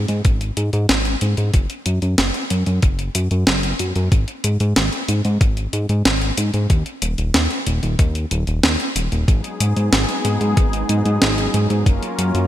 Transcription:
0.08 analog synth bass G#2, closed hi-hat
0.25 analog synth bass G#1, kick, closed hi-hat
0.41 closed hi-hat
0.57 analog synth bass G#2, closed hi-hat
0.73 analog synth bass G#2, closed hi-hat
0.89 analog synth bass G#1, snare, closed hi-hat
1.05 closed hi-hat
1.21 analog synth bass G#2, closed hi-hat
1.37 analog synth bass G#2, closed hi-hat
1.54 analog synth bass F#1, kick, closed hi-hat
1.70 closed hi-hat
1.86 analog synth bass F#2, closed hi-hat
2.02 analog synth bass F#2, closed hi-hat
2.18 analog synth bass F#1, snare, closed hi-hat
2.34 closed hi-hat
2.50 analog synth bass F#2, closed hi-hat
2.66 analog synth bass F#2, closed hi-hat
2.82 analog synth bass F#1, kick, closed hi-hat
2.99 closed hi-hat
3.15 analog synth bass F#2, closed hi-hat
3.31 analog synth bass F#2, closed hi-hat
3.47 analog synth bass F#1, snare, closed hi-hat
3.63 closed hi-hat
3.79 analog synth bass F#2, closed hi-hat
3.96 analog synth bass F#2, closed hi-hat
4.12 analog synth bass G#1, kick, closed hi-hat
4.28 closed hi-hat
4.44 analog synth bass G#2, closed hi-hat
4.60 analog synth bass G#2, closed hi-hat
4.76 analog synth bass G#1, snare, closed hi-hat
4.93 closed hi-hat
5.08 analog synth bass G#2, closed hi-hat
5.25 analog synth bass G#2, closed hi-hat
5.41 analog synth bass G#1, kick, closed hi-hat
5.57 closed hi-hat
5.73 analog synth bass G#2, closed hi-hat
5.89 analog synth bass G#2, closed hi-hat
6.05 analog synth bass G#1, snare, closed hi-hat
6.21 closed hi-hat
6.38 analog synth bass G#2, closed hi-hat
6.54 analog synth bass G#2, closed hi-hat
6.70 analog synth bass D#2, kick, closed hi-hat
6.86 closed hi-hat
7.02 analog synth bass D#1, closed hi-hat
7.18 analog synth bass D#1, closed hi-hat
7.34 analog synth bass D#2, snare, closed hi-hat
7.50 closed hi-hat
7.67 analog synth bass D#1, closed hi-hat
7.83 analog synth bass D#1, closed hi-hat
7.99 analog synth bass D#2, kick, closed hi-hat
8.15 closed hi-hat
8.31 analog synth bass D#1, closed hi-hat
8.47 analog synth bass D#1, closed hi-hat
8.63 analog synth bass D#2, snare, closed hi-hat
8.80 closed hi-hat
8.96 analog synth bass D#1, closed hi-hat
9.12 analog synth bass D#1, closed hi-hat
9.28 analog synth bass G#1, analog synth pad F#3 G#3 B3 D#4 G#4, kick, closed hi-hat
9.44 closed hi-hat
9.60 analog synth bass G#2, closed hi-hat
9.77 analog synth bass G#2, closed hi-hat
9.93 analog synth bass G#1, snare, closed hi-hat
10.09 closed hi-hat
10.25 analog synth bass G#2, closed hi-hat
10.41 analog synth bass G#2, closed hi-hat
10.57 analog synth bass G#1, kick, closed hi-hat
10.73 closed hi-hat
10.89 analog synth bass G#2, closed hi-hat
11.05 analog synth bass G#2, closed hi-hat
11.22 analog synth bass G#1, snare, closed hi-hat
11.38 closed hi-hat
11.54 analog synth bass G#2, closed hi-hat
11.70 analog synth bass G#2, closed hi-hat
11.86 analog synth bass F#1, analog synth pad A#3 C#4 F4 A#4, kick, closed hi-hat
12.03 closed hi-hat
12.19 analog synth bass F#2, closed hi-hat
12.35 analog synth bass F#2, closed hi-hat

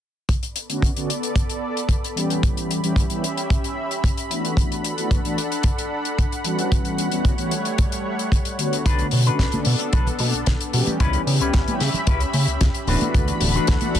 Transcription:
0.29 analog synth pad B3 A4 D5 B5, kick, closed hi-hat
0.43 closed hi-hat
0.56 closed hi-hat
0.69 analog polysynth D3 A3 B3 C#4 F#4, closed hi-hat
0.82 kick, closed hi-hat
0.96 analog polysynth D3 A3 B3 C#4 F#4, closed hi-hat
1.10 closed hi-hat
1.23 closed hi-hat
1.36 kick, closed hi-hat
1.49 closed hi-hat
1.77 closed hi-hat
1.89 kick, closed hi-hat
2.04 closed hi-hat
2.15 analog polysynth E3 G3 B3 C#4 G4, closed hi-hat
2.30 closed hi-hat
2.43 analog synth pad C#4 G4 E5, kick, closed hi-hat
2.57 closed hi-hat
2.71 closed hi-hat
2.83 analog polysynth E3 G3 B3 C#4 G4, closed hi-hat
2.96 kick, closed hi-hat
3.10 analog polysynth E3 G3 B3 C#4 G4, closed hi-hat
3.24 closed hi-hat
3.37 closed hi-hat
3.50 kick, closed hi-hat
3.64 closed hi-hat
3.91 closed hi-hat
4.04 kick, closed hi-hat
4.17 closed hi-hat
4.29 analog polysynth E3 A3 B3 D4 F#4, analog synth pad D4 A4 F#5, closed hi-hat
4.45 closed hi-hat
4.57 kick, closed hi-hat
4.72 closed hi-hat
4.84 closed hi-hat
4.97 analog polysynth E3 A3 B3 D4 F#4, closed hi-hat
5.11 kick, closed hi-hat
5.25 analog polysynth E3 A3 B3 D4 F#4, closed hi-hat
5.38 closed hi-hat
5.52 closed hi-hat
5.63 kick, closed hi-hat
5.78 closed hi-hat
6.05 closed hi-hat
6.19 kick, closed hi-hat
6.32 closed hi-hat
6.44 analog polysynth E3 G3 B3 C#4 F#4, closed hi-hat
6.59 closed hi-hat
6.71 analog synth pad G3 A3 C#5, kick, closed hi-hat
6.85 closed hi-hat
6.98 closed hi-hat
7.11 analog polysynth E3 G3 B3 C#4 F#4, closed hi-hat
7.25 kick, closed hi-hat
7.38 analog polysynth E3 G3 B3 C#4 F#4, closed hi-hat
7.51 closed hi-hat
7.65 closed hi-hat
7.78 kick, closed hi-hat
7.92 closed hi-hat
8.19 closed hi-hat
8.32 kick, closed hi-hat
8.45 closed hi-hat
8.58 analog polysynth D3 A3 B3 F#4 C#5, closed hi-hat
8.73 closed hi-hat
8.85 analog synth bass B1, analog synth pad B3 D4 A4, clean electric guitar D4 A4 B4, kick, closed hi-hat
8.99 closed hi-hat
9.11 analog synth bass B2, open hi-hat
9.26 analog polysynth D3 A3 B3 C#4 F#4, clean electric guitar D4 A4 B4, closed hi-hat
9.39 analog synth bass B1, kick, snare, closed hi-hat
9.52 analog polysynth D3 A3 B3 C#4 F#4, closed hi-hat, high conga
9.65 analog synth bass B2, open hi-hat
9.80 closed hi-hat
9.92 analog synth bass B1, clean electric guitar D4 A4 B4, kick, closed hi-hat
10.07 closed hi-hat, low conga
10.19 analog synth bass B2, muted clean electric guitar stroke, open hi-hat, high conga
10.33 analog synth bass B1, muted clean electric guitar stroke, closed hi-hat
10.46 analog synth bass B1, kick, snare, closed hi-hat
10.61 closed hi-hat
10.73 analog synth bass B2, analog polysynth E3 G3 B3 C#4 G4, muted clean electric guitar stroke, open hi-hat
10.87 closed hi-hat, high conga
11.00 analog synth bass C#2, clean electric guitar C#4 E4 B4, analog synth pad C#4 G4 E5 B5, kick, closed hi-hat
11.13 closed hi-hat
11.27 analog synth bass C#3, open hi-hat
11.40 analog synth bass C#2, analog polysynth E3 G3 B3 C#4 G4, clean electric guitar C#4 E4 B4, closed hi-hat
11.54 analog synth bass C#2, kick, snare, closed hi-hat
11.67 analog polysynth E3 G3 B3 C#4 G4, closed hi-hat, high conga
11.80 analog synth bass C#3, snare, open hi-hat
11.94 closed hi-hat, low conga
12.07 analog synth bass C#2, clean electric guitar C#4 E4 B4, kick, closed hi-hat
12.20 closed hi-hat
12.33 analog synth bass C#3, muted clean electric guitar stroke, open hi-hat, high conga
12.48 analog synth bass C#2, muted clean electric guitar stroke, closed hi-hat
12.61 analog synth bass C#2, kick, snare, closed hi-hat
12.74 closed hi-hat
12.87 analog synth bass D1, analog polysynth E3 A3 B3 D4 F#4, clean electric guitar D4 F#4 B4, analog synth pad D4 A4 F#5 B5, open hi-hat, low conga
13.01 closed hi-hat, high conga
13.14 analog synth bass D2, kick, closed hi-hat
13.28 closed hi-hat
13.41 analog synth bass D1, open hi-hat
13.55 analog polysynth E3 A3 B3 D4 F#4, clean electric guitar D4 F#4 B4, closed hi-hat
13.67 analog synth bass D2, kick, snare, closed hi-hat
13.81 analog polysynth E3 A3 B3 D4 F#4, closed hi-hat, high conga
13.95 analog synth bass D1, open hi-hat

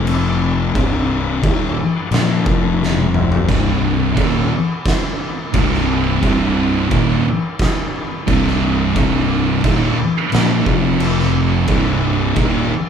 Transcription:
Already playing: fingered electric bass F1, distorted electric guitar F2 C3 F3
0.07 crash
0.75 fingered electric bass C1, distorted electric guitar C2 G2 C3, kick, crash
1.42 fingered electric bass D#1, distorted electric guitar D#2 A#2 D#3, kick, crash
2.11 fingered electric bass A#1, distorted electric guitar A#2 F3 A#3, snare, crash
2.46 fingered electric bass F1, distorted electric guitar F2 C3 F3, kick
2.83 snare
2.98 high tom
3.14 mid tom
3.32 floor tom
3.48 fingered electric bass C1, distorted electric guitar C2 G2 C3, kick, splash, crash
4.17 fingered electric bass D#1, distorted electric guitar D#2 A#2 D#3, kick, crash
4.85 kick, snare, crash
5.54 fingered electric bass C1, distorted electric guitar C2 G2 C3, kick, crash
5.74 snare
6.22 fingered electric bass C1, distorted electric guitar C2 G2 C3, kick, crash
6.90 fingered electric bass D#1, distorted electric guitar D#2 A#2 D#3, kick, crash
7.59 kick, snare, crash
8.27 fingered electric bass C1, distorted electric guitar C2 G2 C3, kick, crash
8.47 snare
8.96 fingered electric bass C1, distorted electric guitar C2 G2 C3, kick, crash
9.64 fingered electric bass D#1, distorted electric guitar D#2 A#2 D#3, kick, crash
10.32 fingered electric bass A#1, distorted electric guitar A#2 F3 A#3, snare, crash
10.66 fingered electric bass F1, distorted electric guitar F2 C3 F3, kick
11.00 crash
11.19 snare
11.68 fingered electric bass C1, distorted electric guitar C2 G2 C3, kick, crash
12.36 fingered electric bass D#1, distorted electric guitar D#2 A#2 D#3, kick, crash

